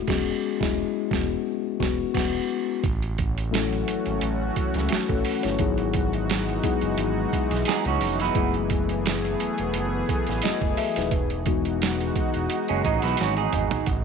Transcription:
Already playing: G#3 A3 E4 F#4
0.08 E1 G#3 B3 C#4 F#4 G#4, kick, snare, crash
0.61 E1 G#3 E4, kick, snare
1.11 E1 B3 F#4, kick, snare
1.80 E1 B3 F#4, kick, snare
2.14 E1 B3 F#4, kick, snare, crash
2.84 A1 E3 A3 C#4 F#4, kick, closed hi-hat
3.02 closed hi-hat
3.18 kick, closed hi-hat
3.38 closed hi-hat
3.51 F#3 A3 C#4 E4 A4, snare, closed hi-hat
3.73 closed hi-hat
3.88 G#1, closed hi-hat
4.06 G#1, closed hi-hat
4.21 A1, closed hi-hat
4.56 kick, closed hi-hat
4.74 C#2, snare, closed hi-hat
4.89 A1 A3 F#4, snare, closed hi-hat
5.09 A1 C#4 A4, kick, closed hi-hat
5.25 open hi-hat
5.43 G1 E4 C#5, snare, closed hi-hat
5.59 G#1 F#3 G#3 B3 D#4 E4 F#4 G#4, kick, closed hi-hat
5.78 closed hi-hat
5.94 kick, closed hi-hat
6.13 closed hi-hat
6.30 snare, closed hi-hat
6.49 closed hi-hat
6.63 F#1 F#3 B3 D#4 E4 G#4, kick, closed hi-hat
6.81 F#1, closed hi-hat
6.98 G#1, closed hi-hat
7.33 kick, closed hi-hat
7.51 B1, snare, closed hi-hat
7.65 D#4 G#4, snare, closed hi-hat
7.85 C#2 C#4 F#4, closed hi-hat
8.01 F1, open hi-hat
8.20 B3 E4, snare, closed hi-hat
8.35 F#1 F#3 A3 B3 E4 G#4, kick, closed hi-hat
8.54 closed hi-hat
8.70 kick, closed hi-hat
8.89 closed hi-hat
9.06 snare, closed hi-hat
9.25 closed hi-hat
9.40 E1, closed hi-hat
9.58 E1, closed hi-hat
9.74 F#1, closed hi-hat
10.09 kick, closed hi-hat
10.27 A1, snare, closed hi-hat
10.42 F#1 F#4 D#5, snare, closed hi-hat
10.61 F#1, kick, closed hi-hat
10.77 G#4 E5, open hi-hat
10.96 D#1 D#4 B4, snare, closed hi-hat
11.11 E1 G#3 D#4 F#4, kick, closed hi-hat
11.30 closed hi-hat
11.45 E3 G#3 B3 D#4 F#4, kick, closed hi-hat
11.65 closed hi-hat
11.82 snare, closed hi-hat
12.00 closed hi-hat
12.16 E1, kick, closed hi-hat
12.34 E1, closed hi-hat
12.50 closed hi-hat
12.68 F#1 G#3 C#4, closed hi-hat
12.85 A1 G#3 D#4, kick, closed hi-hat
13.02 B1 B3 E4, snare, closed hi-hat
13.17 G#1 F#4, snare, closed hi-hat
13.21 C#4
13.37 D#4 G#4, closed hi-hat
13.53 G#1, closed hi-hat, mid tom
13.71 closed hi-hat, floor tom
13.86 A1 E3 A3 C#4 F#4, kick, closed hi-hat

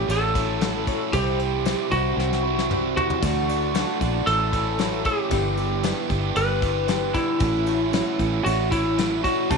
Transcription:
Already playing: A3 C#4 E4 F#4 C#5
0.08 A1 E3 A3 C#4 E4 F#4 A4 C#5, crash
0.34 A3 C#4 E4 F#4 C#5, kick, crash
0.38 E4
0.60 A2 E3 A3 C#4 E4 F#4 A4 C#5, snare, crash
0.87 E4 F#4 C#5, kick, crash
1.13 C2 C3 E3 G3 C4 E4 G4 C5, kick, crash
1.39 E4 G4 C5, crash
1.64 E3 G3 C4 E4 G4 C5, snare, crash
1.68 C5
1.91 C2 G3 C4 E4 F#4, kick, crash
2.17 C2 E3 G3 C4 E4 C5, snare
2.33 snare
2.43 G3 C4 E4 G4 C5
2.59 snare
2.70 C3 E3 G3 C4 E4 G4 C5, mid tom
2.96 E4 F#4 G4 C5, floor tom
3.10 floor tom
3.21 D2 D3 E3 A3 D4 E4 F#4 A4 D5, kick, crash
3.48 A3 D4 F#4 D5, crash
3.74 D3 A3 D4 E4 F#4 A4 D5, snare, crash
4.00 A#1 A3 D4 F#4, kick, crash
4.26 A1 A2 E3 A3 C#4 E4 F#4 A4 C#5, crash
4.52 A3 C#4 E4 F#4 C#5, kick, crash
4.56 E4
4.78 A2 E3 A3 C#4 E4 F#4 B4 C#5, snare, crash
5.05 E4 F#4 G4 C#5, kick, crash
5.30 G1 G2 D3 E3 G3 B3 D4 E4 G4 B4, kick, crash
5.57 B3 D4 E4 G4, crash
5.82 G3 B3 D4 E4 G4 B4, snare, crash
5.86 D4 G4
6.10 G1 G3 B3 D4 G4, kick, crash
6.34 G1 G3 B3 D4 E4 G4 B4, crash
6.61 G3 B3 D4 E4 G4, kick, crash
6.65 B3
6.87 G2 D3 G3 B3 D4 E4 G4 B4, snare, crash
6.91 D4 G4
7.14 D4 E4 G4, kick, crash
7.19 B3
7.39 A1 A2 E3 A3 C#4 E4 F#4 A4 C#5, kick, crash
7.66 E4 F#4 C#5, crash
7.92 E3 A3 C#4 E4 F#4 A4, snare, crash
7.96 F#4 C#5
8.18 A1 A3 C#4 E4, kick, crash
8.44 A1 E3 A3 C#4 E4 F#4 A4, crash
8.71 A3 C#4 E4 F#4 C#5, kick, crash
8.75 E4
8.97 A2 E3 A3 C#4 E4 F#4 A4, snare, crash
9.01 C#5
9.24 E4 F#4 C#5, kick, crash
9.49 C2 C3 E3 G3 C4 D4 E4 G4 C5, kick, crash
9.53 G4

